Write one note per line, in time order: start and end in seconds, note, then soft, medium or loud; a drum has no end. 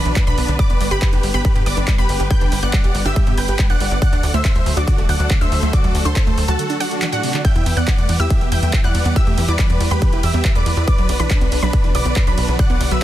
0.00 7.41 D3 medium
0.00 0.56 F#3 medium
0.00 3.98 B3 medium
0.00 0.24 D4 medium
0.00 0.56 F#4 medium
0.00 0.24 B4 loud
0.00 3.98 B4 medium
0.00 0.24 B5 medium
0.06 0.15 B1 medium
0.06 0.12 E3 loud
0.06 closed hi-hat soft
0.16 0.20 F#2 loud
0.16 kick loud
0.16 clap loud
0.16 closed hi-hat medium
0.27 0.36 B1 medium
0.27 0.37 B2 medium
0.27 0.56 D4 medium
0.27 0.56 B4 loud
0.27 0.56 B5 loud
0.27 closed hi-hat soft
0.38 0.47 B1 medium
0.38 0.42 B3 medium
0.38 open hi-hat loud
0.48 0.57 B1 medium
0.48 0.55 D3 medium
0.48 closed hi-hat soft
0.59 3.99 G3 medium
0.59 0.66 G3 medium
0.59 3.99 G4 medium
0.59 0.88 B4 medium
0.59 0.88 D5 loud
0.59 0.88 D6 loud
0.59 kick loud
0.59 closed hi-hat medium
0.70 0.79 G1 medium
0.70 0.80 B3 medium
0.70 closed hi-hat soft
0.81 0.90 G1 loud
0.81 0.87 G3 medium
0.81 open hi-hat loud
0.91 1.00 G1 loud
0.91 0.98 G4 loud
0.91 1.30 G4 medium
0.91 1.30 B4 loud
0.91 1.30 B5 loud
0.91 closed hi-hat soft
1.02 1.12 G3 medium
1.02 kick loud
1.02 clap loud
1.02 closed hi-hat medium
1.13 1.22 G1 medium
1.13 1.22 D4 loud
1.13 closed hi-hat soft
1.23 1.32 G1 loud
1.23 1.30 G3 medium
1.23 open hi-hat loud
1.34 1.43 G1 medium
1.34 1.44 B3 medium
1.34 1.63 G4 medium
1.34 1.63 B4 medium
1.34 1.63 B5 loud
1.34 closed hi-hat soft
1.45 1.51 G3 medium
1.45 kick loud
1.45 closed hi-hat medium
1.55 1.65 G2 medium
1.55 1.62 G4 loud
1.55 closed hi-hat soft
1.66 1.75 G1 loud
1.66 1.76 G3 medium
1.66 1.95 B4 medium
1.66 1.95 D5 medium
1.66 1.95 D6 loud
1.66 open hi-hat loud
1.77 1.86 G1 medium
1.77 1.87 D4 loud
1.77 closed hi-hat soft
1.88 1.94 G3 medium
1.88 kick loud
1.88 clap loud
1.88 closed hi-hat medium
1.98 2.07 G1 medium
1.98 2.08 B3 medium
1.98 2.27 G4 medium
1.98 2.27 B4 loud
1.98 2.27 B5 loud
1.98 closed hi-hat soft
2.09 2.18 G1 loud
2.09 2.16 G3 medium
2.09 open hi-hat medium
2.20 2.29 G1 loud
2.20 2.26 G4 loud
2.20 closed hi-hat soft
2.30 2.40 G3 medium
2.30 2.59 B4 medium
2.30 2.59 G5 loud
2.30 2.59 G6 loud
2.30 kick loud
2.30 closed hi-hat medium
2.41 2.50 G1 medium
2.41 2.51 D4 loud
2.41 closed hi-hat soft
2.52 2.61 G1 loud
2.52 2.58 G3 medium
2.52 open hi-hat loud
2.63 2.72 G1 medium
2.63 2.73 B3 medium
2.63 3.01 D5 medium
2.63 3.01 F#5 loud
2.63 3.01 F#6 loud
2.63 closed hi-hat soft
2.73 2.80 G3 medium
2.73 kick loud
2.73 clap loud
2.73 closed hi-hat medium
2.84 2.93 G1 medium
2.84 2.91 G4 loud
2.84 closed hi-hat soft
2.95 3.04 G1 loud
2.95 3.05 G3 medium
2.95 open hi-hat medium
3.05 3.14 G1 medium
3.05 3.15 D4 loud
3.05 3.34 G4 medium
3.05 3.34 E5 loud
3.05 3.34 E6 loud
3.05 closed hi-hat soft
3.16 3.23 G3 medium
3.16 kick loud
3.16 closed hi-hat medium
3.27 3.36 G2 medium
3.27 3.37 B3 medium
3.27 closed hi-hat soft
3.37 3.47 G1 loud
3.37 3.44 G3 medium
3.37 3.67 B4 medium
3.37 3.67 G5 loud
3.37 3.66 G6 loud
3.37 open hi-hat loud
3.48 3.57 G1 medium
3.48 3.55 G4 loud
3.48 closed hi-hat soft
3.59 3.69 G3 medium
3.59 kick loud
3.59 clap loud
3.59 closed hi-hat medium
3.70 3.79 G1 medium
3.70 3.80 D4 loud
3.70 3.99 D5 medium
3.70 3.99 F#5 loud
3.70 3.99 F#6 loud
3.70 closed hi-hat soft
3.80 3.89 G1 medium
3.80 3.87 G3 medium
3.80 open hi-hat medium
3.91 4.00 G1 medium
3.91 4.01 B3 medium
3.91 closed hi-hat soft
4.02 4.09 D3 medium
4.02 7.41 F#3 medium
4.02 7.41 A3 medium
4.02 7.41 F#4 medium
4.02 7.41 A4 medium
4.02 4.31 D5 medium
4.02 4.31 F#5 loud
4.02 4.31 F#6 loud
4.02 kick loud
4.02 closed hi-hat medium
4.13 4.22 D2 medium
4.13 4.19 D4 loud
4.13 closed hi-hat soft
4.23 4.32 D2 loud
4.23 4.33 D3 medium
4.23 open hi-hat loud
4.34 4.43 D2 loud
4.34 4.44 A3 loud
4.34 4.73 C5 medium
4.34 4.73 E5 loud
4.34 4.73 E6 medium
4.34 closed hi-hat soft
4.45 kick loud
4.45 clap loud
4.45 closed hi-hat medium
4.55 4.64 D2 medium
4.55 4.65 F#3 medium
4.55 closed hi-hat soft
4.66 4.75 D2 loud
4.66 4.73 D3 medium
4.66 open hi-hat medium
4.77 4.86 D2 medium
4.77 4.83 D4 loud
4.77 5.06 F#4 medium
4.77 5.06 D5 loud
4.77 5.06 D6 loud
4.77 closed hi-hat soft
4.88 4.98 D3 medium
4.88 kick loud
4.88 closed hi-hat medium
4.98 5.07 D1 medium
4.98 5.08 A3 loud
4.98 closed hi-hat soft
5.09 5.18 D2 loud
5.09 5.16 D3 medium
5.09 5.38 D5 medium
5.09 5.38 F#5 loud
5.09 5.38 F#6 loud
5.09 open hi-hat loud
5.20 5.29 D2 loud
5.20 5.30 F#3 medium
5.20 closed hi-hat soft
5.30 5.37 D3 medium
5.30 kick loud
5.30 clap loud
5.30 closed hi-hat medium
5.41 5.50 D2 medium
5.41 5.48 D4 loud
5.41 5.70 C5 medium
5.41 5.70 E5 loud
5.41 5.70 E6 loud
5.41 closed hi-hat soft
5.52 5.61 D2 loud
5.52 5.62 D3 medium
5.52 open hi-hat medium
5.63 5.72 D2 medium
5.63 5.73 A3 loud
5.63 closed hi-hat soft
5.73 5.80 D3 medium
5.73 6.02 F#4 medium
5.73 6.02 D5 loud
5.73 6.02 D6 loud
5.73 kick loud
5.73 closed hi-hat medium
5.84 5.93 D2 medium
5.84 5.94 F#3 medium
5.84 closed hi-hat soft
5.95 6.04 D2 loud
5.95 6.01 D3 medium
5.95 open hi-hat loud
6.05 6.14 D2 loud
6.05 6.12 D4 loud
6.05 6.44 A4 medium
6.05 6.44 C5 loud
6.05 6.44 C6 loud
6.05 closed hi-hat soft
6.16 kick loud
6.16 clap loud
6.16 closed hi-hat medium
6.27 6.36 D2 medium
6.27 6.37 A3 loud
6.27 closed hi-hat soft
6.37 6.47 D2 medium
6.37 6.44 D3 medium
6.37 open hi-hat medium
6.48 6.57 D2 medium
6.48 6.58 F#3 medium
6.48 6.77 F#4 medium
6.48 6.77 A4 loud
6.48 6.77 A5 loud
6.48 closed hi-hat soft
6.59 6.66 D3 medium
6.59 closed hi-hat medium
6.70 6.76 D4 loud
6.70 closed hi-hat soft
6.80 6.90 D3 medium
6.80 7.09 D4 medium
6.80 7.09 F#4 loud
6.80 7.09 F#5 loud
6.80 open hi-hat loud
6.91 6.95 A3 medium
6.91 closed hi-hat soft
7.02 7.06 E3 medium
7.02 clap loud
7.02 closed hi-hat medium
7.12 7.19 A2 medium
7.12 7.41 D4 medium
7.12 7.41 F#4 loud
7.12 7.41 F#5 loud
7.12 closed hi-hat soft
7.23 7.30 C3 loud
7.23 open hi-hat medium
7.34 7.38 D3 medium
7.34 clap medium
7.34 closed hi-hat soft
7.45 10.84 E3 medium
7.45 7.51 E3 medium
7.45 10.84 G3 medium
7.45 13.04 B3 medium
7.45 10.84 G4 medium
7.45 13.04 B4 medium
7.45 7.74 E5 medium
7.45 7.74 G5 loud
7.45 7.73 G6 loud
7.45 kick loud
7.45 closed hi-hat medium
7.45 ride medium
7.55 7.64 E2 medium
7.55 7.62 E4 loud
7.55 closed hi-hat soft
7.66 7.75 E2 loud
7.66 7.76 E3 medium
7.66 open hi-hat loud
7.66 ride medium
7.77 7.86 E2 medium
7.77 7.87 B3 loud
7.77 8.15 D5 medium
7.77 8.15 F#5 loud
7.77 8.15 F#6 medium
7.77 closed hi-hat soft
7.87 7.94 E3 medium
7.87 kick loud
7.87 clap loud
7.87 closed hi-hat medium
7.87 ride medium
7.98 8.07 E2 medium
7.98 8.08 A3 medium
7.98 closed hi-hat soft
8.09 8.18 E2 loud
8.09 8.16 E3 medium
8.09 open hi-hat loud
8.09 ride medium
8.20 8.29 E2 medium
8.20 8.26 E4 loud
8.20 8.49 G4 medium
8.20 8.49 E5 loud
8.20 8.49 E6 loud
8.20 closed hi-hat soft
8.30 8.40 E3 medium
8.30 kick loud
8.30 closed hi-hat medium
8.30 ride medium
8.41 8.50 E1 medium
8.41 8.51 B3 loud
8.41 closed hi-hat soft
8.52 8.61 E2 medium
8.52 8.59 E3 medium
8.52 8.81 E5 medium
8.52 8.81 G5 loud
8.52 8.81 G6 loud
8.52 open hi-hat loud
8.52 ride medium
8.63 8.72 E2 medium
8.63 8.73 A3 medium
8.63 closed hi-hat soft
8.73 8.80 E3 medium
8.73 kick loud
8.73 clap loud
8.73 closed hi-hat medium
8.73 ride medium
8.84 8.93 E2 medium
8.84 8.91 E4 loud
8.84 9.13 D5 medium
8.84 9.13 F#5 loud
8.84 9.13 F#6 loud
8.84 closed hi-hat soft
8.95 9.04 E2 medium
8.95 9.05 E3 medium
8.95 open hi-hat medium
8.95 ride medium
9.05 9.14 E2 medium
9.05 9.15 B3 loud
9.05 closed hi-hat soft
9.16 9.23 E3 medium
9.16 9.45 G4 medium
9.16 9.45 E5 loud
9.16 9.45 E6 loud
9.16 kick loud
9.16 closed hi-hat medium
9.16 ride medium
9.27 9.36 E2 medium
9.27 9.37 A3 medium
9.27 closed hi-hat soft
9.38 9.47 E2 loud
9.38 9.44 E3 medium
9.38 open hi-hat loud
9.38 ride medium
9.48 9.57 E2 medium
9.48 9.55 E4 loud
9.48 9.87 B4 medium
9.48 9.87 D5 loud
9.48 9.87 D6 medium
9.48 closed hi-hat soft
9.59 9.69 E3 medium
9.59 kick loud
9.59 clap loud
9.59 closed hi-hat medium
9.59 ride medium
9.70 9.79 E2 medium
9.70 9.80 B3 loud
9.70 closed hi-hat soft
9.80 9.89 E2 loud
9.80 9.87 E3 medium
9.80 open hi-hat loud
9.80 ride medium
9.91 10.00 E2 medium
9.91 10.01 A3 medium
9.91 10.20 G4 medium
9.91 10.20 B4 loud
9.91 10.20 B5 loud
9.91 closed hi-hat soft
10.02 10.09 E3 medium
10.02 kick loud
10.02 closed hi-hat medium
10.02 ride medium
10.13 10.22 E1 medium
10.13 10.19 E4 loud
10.13 closed hi-hat soft
10.23 10.32 E2 loud
10.23 10.33 E3 medium
10.23 10.52 G4 medium
10.23 10.52 E5 medium
10.23 10.52 E6 medium
10.23 open hi-hat loud
10.23 ride medium
10.34 10.43 E2 medium
10.34 10.44 B3 loud
10.34 closed hi-hat soft
10.45 10.51 E3 medium
10.45 kick loud
10.45 clap loud
10.45 closed hi-hat medium
10.45 ride medium
10.55 10.64 E2 medium
10.55 10.65 A3 medium
10.55 10.84 B4 medium
10.55 10.84 D5 loud
10.55 10.84 D6 loud
10.55 closed hi-hat soft
10.66 10.75 E2 medium
10.66 10.73 E3 medium
10.66 open hi-hat medium
10.66 ride medium
10.77 10.86 E2 loud
10.77 10.84 E4 loud
10.77 closed hi-hat soft
10.87 13.04 D3 medium
10.87 13.04 F#3 medium
10.87 13.04 F#4 medium
10.87 11.16 B4 medium
10.87 11.16 D5 loud
10.87 11.16 D6 loud
10.87 kick loud
10.87 closed hi-hat medium
10.87 ride medium
10.98 11.07 B1 medium
10.98 11.08 F#3 loud
10.98 closed hi-hat soft
11.09 11.18 B1 loud
11.09 11.16 B2 medium
11.09 open hi-hat loud
11.09 ride medium
11.20 11.29 B1 medium
11.20 11.30 E3 medium
11.20 11.58 D4 medium
11.20 11.58 B4 loud
11.20 11.58 B5 medium
11.20 closed hi-hat soft
11.30 11.37 B2 medium
11.30 kick loud
11.30 clap loud
11.30 closed hi-hat medium
11.30 ride medium
11.41 11.50 B1 medium
11.41 11.48 B3 loud
11.41 closed hi-hat soft
11.52 11.61 B1 loud
11.52 11.62 B2 medium
11.52 open hi-hat loud
11.52 ride medium
11.62 11.72 B1 loud
11.62 11.73 F#3 loud
11.62 11.91 D4 medium
11.62 11.91 B4 medium
11.62 11.91 B5 loud
11.62 closed hi-hat soft
11.73 11.80 B2 medium
11.73 kick loud
11.73 closed hi-hat medium
11.73 ride medium
11.84 11.93 F#1 medium
11.84 11.94 E3 medium
11.84 closed hi-hat soft
11.95 12.04 B1 loud
11.95 12.01 B2 medium
11.95 12.24 B4 medium
11.95 12.24 D5 loud
11.95 12.24 D6 loud
11.95 open hi-hat loud
11.95 ride medium
12.06 12.15 B1 medium
12.06 12.12 B3 loud
12.06 closed hi-hat soft
12.16 12.26 B2 medium
12.16 kick loud
12.16 clap loud
12.16 closed hi-hat medium
12.16 ride medium
12.27 12.36 B1 medium
12.27 12.37 F#3 loud
12.27 12.56 D4 medium
12.27 12.56 B4 loud
12.27 12.56 B5 loud
12.27 closed hi-hat soft
12.38 12.47 B1 loud
12.38 12.44 B2 medium
12.38 open hi-hat loud
12.38 ride medium
12.48 12.57 B1 medium
12.48 12.58 E3 medium
12.48 closed hi-hat soft
12.59 12.66 B2 medium
12.59 12.88 D5 medium
12.59 12.88 F#5 loud
12.59 12.88 F#6 loud
12.59 kick loud
12.59 closed hi-hat medium
12.59 ride medium
12.70 12.79 B1 medium
12.70 12.76 B3 loud
12.70 closed hi-hat soft
12.81 12.90 B1 loud
12.81 12.90 B2 medium
12.81 open hi-hat loud
12.81 ride medium
12.91 13.00 B1 medium
12.91 13.01 F#3 loud
12.91 13.04 B4 medium
12.91 13.04 E5 loud
12.91 13.04 E6 loud
12.91 closed hi-hat soft